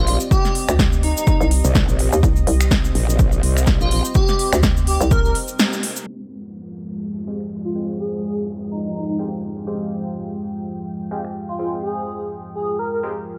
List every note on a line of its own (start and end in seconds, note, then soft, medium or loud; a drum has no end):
0.00 0.18 A#1 loud
0.00 6.03 C4 medium
0.00 6.03 G4 medium
0.00 2.19 D5 medium
0.00 6.03 D#5 loud
0.07 0.16 F4 medium
0.07 open hi-hat medium
0.20 shaker medium
0.31 0.69 G4 loud
0.31 kick loud
0.31 shaker medium
0.45 snare soft
0.45 shaker soft
0.55 open hi-hat loud
0.68 1.14 D2 loud
0.68 finger snap medium
0.68 shaker medium
0.79 kick loud
0.79 snare loud
0.79 shaker medium
0.92 shaker soft
1.03 1.12 D#4 medium
1.03 open hi-hat medium
1.17 1.23 D#4 medium
1.17 shaker medium
1.27 1.36 D#4 medium
1.27 kick loud
1.27 shaker medium
1.41 1.62 C2 loud
1.41 1.47 D#4 medium
1.41 shaker soft
1.51 open hi-hat loud
1.65 1.86 C2 loud
1.65 shaker medium
1.75 kick loud
1.75 snare loud
1.75 shaker medium
1.89 2.10 A#1 loud
1.89 shaker soft
1.99 open hi-hat medium
2.12 2.21 D#2 loud
2.12 shaker medium
2.23 2.45 C2 loud
2.23 6.03 C5 medium
2.23 kick loud
2.23 shaker medium
2.36 shaker soft
2.47 2.93 C2 medium
2.47 open hi-hat loud
2.61 finger snap medium
2.61 shaker medium
2.71 kick loud
2.71 snare loud
2.71 shaker medium
2.84 shaker soft
2.95 3.41 A#1 loud
2.95 open hi-hat medium
3.10 shaker medium
3.19 kick loud
3.19 shaker medium
3.32 shaker soft
3.43 3.78 C2 loud
3.43 open hi-hat loud
3.57 finger snap medium
3.57 shaker medium
3.67 kick loud
3.67 snare loud
3.67 shaker medium
3.81 4.02 A#1 loud
3.81 3.87 F4 medium
3.81 shaker soft
3.91 4.00 F4 medium
3.91 open hi-hat medium
4.05 shaker medium
4.15 4.53 G4 loud
4.15 kick loud
4.15 shaker medium
4.28 snare soft
4.28 shaker soft
4.39 open hi-hat loud
4.53 4.98 D2 loud
4.53 finger snap medium
4.53 shaker medium
4.63 kick loud
4.63 snare loud
4.63 shaker medium
4.77 shaker soft
4.87 5.09 G4 loud
4.87 open hi-hat medium
5.01 5.33 C2 loud
5.01 shaker medium
5.11 5.20 A#4 medium
5.11 kick loud
5.11 shaker medium
5.25 5.31 A#4 medium
5.25 shaker soft
5.35 open hi-hat loud
5.48 shaker medium
5.59 snare loud
5.59 shaker medium
5.73 shaker soft
5.83 open hi-hat medium
5.96 shaker medium
6.07 13.38 F3 medium
6.07 13.38 G#3 medium
6.07 13.38 F4 medium
6.07 13.38 G5 medium
6.07 downlifter medium
7.27 7.36 G#3 medium
7.27 7.36 C4 medium
7.27 7.36 F4 medium
7.27 7.36 G4 loud
7.41 finger snap medium
7.65 7.71 F4 medium
7.75 9.17 G#3 medium
7.75 9.17 C4 medium
7.75 9.17 F4 medium
7.75 7.84 F4 medium
7.75 9.17 G5 medium
7.99 8.37 G#4 medium
8.71 8.80 D#4 medium
8.85 8.91 D#4 medium
8.95 9.04 D#4 medium
9.09 9.15 D#4 medium
9.19 9.28 G#3 medium
9.19 9.28 C4 medium
9.19 9.28 F4 medium
9.19 9.28 G4 loud
9.67 11.09 G#3 medium
9.67 11.09 C4 medium
9.67 11.09 F4 medium
9.67 11.09 G4 medium
11.11 11.20 G#3 medium
11.11 11.20 C4 medium
11.11 11.20 F4 medium
11.11 11.20 G4 loud
11.25 finger snap medium
11.49 11.55 F4 medium
11.59 13.01 G#3 medium
11.59 13.01 C4 medium
11.59 11.68 F4 medium
11.59 13.01 F4 medium
11.59 13.01 G5 medium
11.83 12.21 G#4 medium
12.55 12.77 G#4 medium
12.79 12.88 A#4 medium
12.93 12.99 A#4 medium
13.03 13.12 G#3 medium
13.03 13.12 C4 medium
13.03 13.12 F4 medium
13.03 13.12 G4 loud